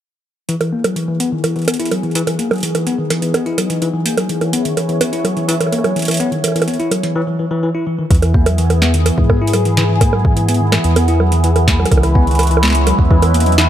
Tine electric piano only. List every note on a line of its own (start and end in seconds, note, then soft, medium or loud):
0.49 0.54 E3 medium
0.61 0.70 E3 medium
0.73 0.82 A#3 medium
0.84 0.94 F#3 medium
0.96 1.05 E3 medium
1.08 1.17 E3 medium
1.20 1.29 B3 medium
1.32 1.41 D#3 medium
1.44 1.53 E3 medium
1.56 1.65 E3 medium
1.68 1.77 B3 medium
1.80 1.91 E4 medium
1.92 2.01 F#3 medium
2.03 2.14 E3 medium
2.15 2.21 E3 medium
2.27 2.36 E3 medium
2.39 2.48 A#3 medium
2.51 2.60 F#3 medium
2.63 2.72 E3 medium
2.75 2.84 E3 medium
2.87 2.96 B3 medium
2.99 3.08 D#3 medium
3.11 3.20 E3 medium
3.22 3.32 E3 medium
3.34 3.44 B3 medium
3.46 3.58 E4 medium
3.58 3.67 F#3 medium
3.70 3.81 E3 medium
3.82 3.87 E3 medium
3.94 4.03 E3 medium
4.06 4.15 A#3 medium
4.18 4.27 F#3 medium
4.30 4.39 E3 medium
4.41 4.51 E3 medium
4.53 4.63 B3 loud
4.65 4.74 D#3 medium
4.77 4.86 E3 medium
4.89 4.98 E3 medium
5.01 5.10 B3 medium
5.13 5.24 E4 medium
5.25 5.34 F#3 medium
5.37 5.47 E3 medium
5.49 5.54 E3 loud
5.60 5.70 E3 medium
5.72 5.82 A#3 medium
5.84 5.94 F#3 medium
5.96 6.05 E3 medium
6.08 6.17 E3 medium
6.20 6.29 B3 loud
6.32 6.41 D#3 medium
6.44 6.53 E3 medium
6.56 6.65 E3 medium
6.68 6.77 B3 medium
6.79 6.91 E4 medium
6.91 7.01 F#3 medium
7.03 7.14 E3 medium
7.15 7.21 E3 loud
7.27 7.36 E3 medium
7.39 7.45 E3 medium
7.51 7.62 E3 loud
7.63 7.68 E3 medium
7.75 7.84 E4 medium
7.87 7.96 E3 medium
7.99 8.04 D#3 medium
8.11 8.16 E3 medium
8.22 8.32 E3 medium
8.34 8.44 A#3 medium
8.46 8.56 F#3 medium
8.58 8.67 E3 medium
8.70 8.79 E3 medium
8.82 8.91 B3 loud
8.94 9.03 D#3 medium
9.06 9.15 E3 medium
9.18 9.27 E3 medium
9.30 9.39 B3 medium
9.42 9.53 E4 medium
9.54 9.63 F#3 medium
9.65 9.76 E3 medium
9.77 9.83 E3 loud
9.89 9.98 E3 medium
10.01 10.10 A#3 medium
10.13 10.22 F#3 medium
10.25 10.34 E3 medium
10.37 10.46 E3 medium
10.49 10.58 B3 medium
10.61 10.70 D#3 medium
10.72 10.82 E3 medium
10.84 10.94 E3 medium
10.96 11.06 B3 medium
11.08 11.19 E4 medium
11.20 11.29 F#3 medium
11.32 11.43 E3 medium
11.44 11.49 E3 medium
11.56 11.65 E3 medium
11.68 11.77 A#3 medium
11.80 11.89 F#3 medium
11.91 12.01 E3 medium
12.03 12.13 E3 medium
12.15 12.24 B3 loud
12.27 12.36 D#3 medium
12.39 12.48 E3 medium
12.51 12.60 E3 medium
12.63 12.72 B3 medium
12.75 12.86 E4 medium
12.87 12.96 F#3 medium
12.99 13.09 E3 medium
13.11 13.16 E3 loud
13.22 13.32 E3 medium
13.34 13.44 A#3 medium
13.46 13.56 F#3 medium
13.58 13.67 E3 medium